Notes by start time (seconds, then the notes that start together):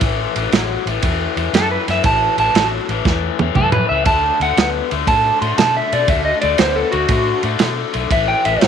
0.01 A1 A2 E3, kick, ride
0.36 A1 A2 E3, ride
0.52 A1 A2 F#3, snare, ride
0.86 A1 A2 E3, ride
1.02 E2 A2 E3, kick, ride
1.36 E2 A2 E3, ride
1.53 F#2 A2 E3 A4, snare, ride
1.72 B4
1.88 F#2 A2 E3 E5, snare, ride
2.04 A1 A2 E3 A5, kick, ride
2.38 A1 A2 E3 A5, ride
2.54 A1 A2 F#3, snare, ride
2.89 A1 A2 E3, ride
3.05 E2 A2 E3, kick, snare
3.39 E2 A2 E3, high tom
3.55 F#2 A2 E3 A4, kick, mid tom
3.72 B4, mid tom
3.89 C#2 A2 E3 E5
4.05 D2 D3 A3 A5, kick, ride
4.40 D2 D3 A3 F#5, ride
4.57 D2 D3 B3, snare, ride
4.91 D2 D3 A3, ride
5.07 A2 D3 A3 A5, kick, ride
5.42 A2 D3 A3 C6, ride
5.58 B2 D3 A3 A5, snare, ride
5.77 E5
5.92 B2 D3 A3 D5, ride
6.07 D2 D3 A3 E5, kick, ride
6.25 D#5
6.41 D2 D3 A3 D5, ride
6.58 D2 D3 B3 C5, snare, ride
6.76 A4
6.91 D2 D3 A3 F#4, ride
7.09 A2 D3 A3, kick, ride
7.43 A2 D3 A3, ride
7.59 B2 D3 A3, snare, ride
7.93 B1 D3 A3, ride
8.10 A1 A2 E3 E5, kick, ride
8.28 G5
8.45 A1 A2 E3 E5, ride
8.61 A1 A2 F#3 C5, snare, ride